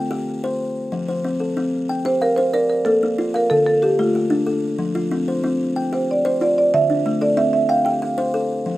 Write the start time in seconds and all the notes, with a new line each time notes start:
Already playing: G5
0.11 G4
0.44 C5
0.92 F3
1.08 C5
1.24 C4
1.40 A4
1.57 C4
1.89 G5
2.05 G4 C5
2.21 A#4 F5
2.36 C5
2.54 A#4 D5
2.70 A#4
2.85 A#3 A4
3.03 A#3
3.18 F4
3.34 A#4 F5
3.50 D3 A4
3.66 A4
3.82 G4 A4
3.99 A3 F4
4.15 G4
4.30 D4
4.46 A4
4.79 F3
4.95 F4
5.11 C4
5.28 C5
5.44 C4
5.76 G5
5.93 G4 C5
6.11 D5
6.25 C5
6.41 F4 D5
6.58 D5
6.74 D3 E5
6.90 D4
7.06 A3
7.21 A4 D5
7.37 C4 E5
7.53 E5
7.69 F5 G5
7.85 G4 G5
8.02 F5
8.18 C5
8.34 A4
8.66 F3